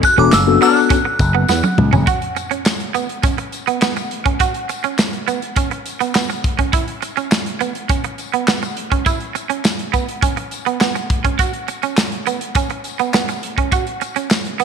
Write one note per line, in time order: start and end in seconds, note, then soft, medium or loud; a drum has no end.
0.03 0.18 F#6 loud
0.03 muted clean electric guitar stroke soft
0.03 kick loud
0.03 closed hi-hat medium
0.03 tambourine medium
0.18 0.30 E1 medium
0.18 0.30 B3 medium
0.18 0.29 C#4 medium
0.18 0.30 D4 medium
0.18 0.30 F#4 medium
0.18 0.31 A4 medium
0.18 0.33 D6 medium
0.18 tambourine soft
0.32 0.56 F#1 medium
0.32 0.63 E6 loud
0.32 snare loud
0.32 clap medium
0.32 closed hi-hat loud
0.32 tambourine medium
0.47 0.97 B3 medium
0.47 0.97 D4 medium
0.47 0.97 F#4 medium
0.47 0.97 A4 medium
0.61 0.80 F#3 loud
0.61 0.73 B3 medium
0.61 0.80 D4 loud
0.61 0.80 A4 medium
0.61 1.75 F#6 loud
0.61 open hi-hat medium
0.61 tambourine soft
0.76 tambourine soft
0.90 1.02 C#4 medium
0.90 kick loud
0.90 closed hi-hat loud
0.90 tambourine medium
1.05 muted clean electric guitar stroke soft
1.19 1.44 F#1 medium
1.19 kick loud
1.19 closed hi-hat medium
1.19 tambourine medium
1.35 1.46 B3 medium
1.49 1.61 E2 loud
1.49 1.61 B3 medium
1.49 snare medium
1.49 tambourine medium
1.63 muted clean electric guitar stroke soft
1.63 high tom medium
1.63 tambourine medium
1.78 1.90 C#2 medium
1.78 mid tom loud
1.93 2.05 F1 loud
1.93 2.04 C#4 medium
1.93 floor tom loud
1.93 tambourine soft
2.07 2.19 F#4 medium
2.07 kick loud
2.07 closed hi-hat medium
2.07 tambourine medium
2.22 closed hi-hat medium
2.36 muted clean electric guitar stroke soft
2.36 closed hi-hat medium
2.36 tambourine soft
2.51 2.62 C#4 medium
2.51 closed hi-hat medium
2.65 snare loud
2.65 clap medium
2.65 tambourine medium
2.80 closed hi-hat medium
2.94 3.06 B3 medium
2.94 closed hi-hat medium
2.94 tambourine soft
3.09 closed hi-hat medium
3.23 3.35 C#4 medium
3.23 kick loud
3.23 closed hi-hat medium
3.23 tambourine soft
3.38 muted clean electric guitar stroke soft
3.38 closed hi-hat soft
3.52 closed hi-hat medium
3.52 tambourine soft
3.67 3.79 B3 medium
3.67 closed hi-hat medium
3.67 tambourine soft
3.81 3.93 B3 medium
3.81 snare loud
3.81 clap medium
3.81 tambourine medium
3.96 muted clean electric guitar stroke soft
3.96 closed hi-hat medium
3.96 tambourine soft
4.11 closed hi-hat medium
4.26 4.37 C#4 medium
4.26 kick loud
4.26 closed hi-hat soft
4.40 4.52 F#4 medium
4.40 kick medium
4.40 closed hi-hat medium
4.40 tambourine medium
4.54 closed hi-hat medium
4.69 muted clean electric guitar stroke soft
4.69 closed hi-hat medium
4.69 tambourine soft
4.84 4.96 C#4 medium
4.84 closed hi-hat soft
4.84 tambourine soft
4.98 snare loud
4.98 clap medium
4.98 tambourine medium
5.13 closed hi-hat soft
5.28 5.39 B3 medium
5.28 closed hi-hat medium
5.28 tambourine soft
5.42 closed hi-hat medium
5.56 5.68 C#4 medium
5.56 kick loud
5.56 closed hi-hat loud
5.56 tambourine soft
5.71 muted clean electric guitar stroke soft
5.71 closed hi-hat soft
5.86 closed hi-hat medium
5.86 tambourine soft
6.00 6.12 B3 medium
6.00 closed hi-hat medium
6.00 tambourine soft
6.15 6.27 B3 medium
6.15 snare loud
6.15 clap medium
6.15 tambourine medium
6.30 muted clean electric guitar stroke soft
6.30 closed hi-hat medium
6.30 tambourine soft
6.44 kick medium
6.44 closed hi-hat medium
6.59 6.70 C#4 medium
6.59 kick medium
6.59 closed hi-hat medium
6.73 6.85 E4 medium
6.73 kick loud
6.73 closed hi-hat medium
6.73 tambourine medium
6.88 closed hi-hat medium
7.02 muted clean electric guitar stroke soft
7.02 closed hi-hat medium
7.02 tambourine soft
7.17 7.29 C#4 medium
7.17 closed hi-hat medium
7.17 tambourine soft
7.31 snare loud
7.31 clap medium
7.31 tambourine medium
7.46 closed hi-hat medium
7.60 7.72 B3 medium
7.60 closed hi-hat medium
7.60 tambourine soft
7.75 closed hi-hat medium
7.89 8.01 C#4 medium
7.89 kick loud
7.89 closed hi-hat medium
7.89 tambourine medium
8.04 muted clean electric guitar stroke soft
8.04 closed hi-hat soft
8.18 closed hi-hat medium
8.18 tambourine soft
8.34 8.45 B3 medium
8.34 closed hi-hat medium
8.48 8.59 B3 medium
8.48 snare loud
8.48 clap medium
8.48 tambourine medium
8.62 muted clean electric guitar stroke soft
8.62 closed hi-hat soft
8.62 tambourine soft
8.77 closed hi-hat medium
8.92 9.03 C#4 medium
8.92 kick medium
8.92 closed hi-hat soft
9.06 9.18 E4 medium
9.06 kick loud
9.06 closed hi-hat medium
9.06 tambourine medium
9.20 closed hi-hat soft
9.35 muted clean electric guitar stroke soft
9.35 closed hi-hat medium
9.35 tambourine soft
9.50 9.61 C#4 medium
9.50 closed hi-hat medium
9.65 snare loud
9.65 clap medium
9.65 tambourine loud
9.79 closed hi-hat medium
9.93 10.05 B3 medium
9.93 kick medium
9.93 closed hi-hat medium
9.93 tambourine soft
10.09 closed hi-hat medium
10.22 10.34 C#4 medium
10.22 kick loud
10.22 closed hi-hat medium
10.22 tambourine soft
10.37 muted clean electric guitar stroke soft
10.37 closed hi-hat medium
10.51 closed hi-hat medium
10.51 tambourine soft
10.66 10.78 B3 medium
10.66 closed hi-hat medium
10.81 10.92 B3 medium
10.81 snare loud
10.81 clap medium
10.81 tambourine medium
10.95 muted clean electric guitar stroke soft
10.95 closed hi-hat medium
10.95 tambourine soft
11.10 kick loud
11.10 closed hi-hat medium
11.25 11.36 C#4 medium
11.25 kick medium
11.25 closed hi-hat medium
11.39 11.51 F#4 medium
11.39 kick medium
11.39 closed hi-hat medium
11.39 tambourine medium
11.53 closed hi-hat soft
11.68 muted clean electric guitar stroke soft
11.68 closed hi-hat medium
11.68 tambourine soft
11.82 11.95 C#4 medium
11.82 closed hi-hat medium
11.82 tambourine soft
11.97 snare loud
11.97 clap medium
11.97 tambourine medium
12.12 closed hi-hat medium
12.26 12.38 B3 medium
12.26 closed hi-hat medium
12.26 tambourine soft
12.41 closed hi-hat medium
12.55 12.67 C#4 medium
12.55 kick loud
12.55 closed hi-hat loud
12.55 tambourine soft
12.70 muted clean electric guitar stroke soft
12.70 closed hi-hat soft
12.84 closed hi-hat medium
12.84 tambourine soft
12.99 13.11 B3 medium
12.99 closed hi-hat medium
12.99 tambourine soft
13.13 13.26 B3 medium
13.13 snare loud
13.13 clap medium
13.13 tambourine medium
13.28 muted clean electric guitar stroke soft
13.28 closed hi-hat medium
13.28 tambourine soft
13.43 closed hi-hat medium
13.58 13.69 C#4 medium
13.58 kick medium
13.58 closed hi-hat medium
13.72 13.84 F#4 medium
13.72 kick loud
13.72 closed hi-hat medium
13.72 tambourine medium
13.87 closed hi-hat soft
14.01 muted clean electric guitar stroke soft
14.01 closed hi-hat medium
14.01 tambourine soft
14.16 14.28 C#4 medium
14.16 closed hi-hat medium
14.16 tambourine soft
14.30 snare loud
14.30 clap medium
14.30 tambourine medium
14.45 closed hi-hat soft
14.60 14.64 B3 medium
14.60 closed hi-hat medium
14.60 tambourine soft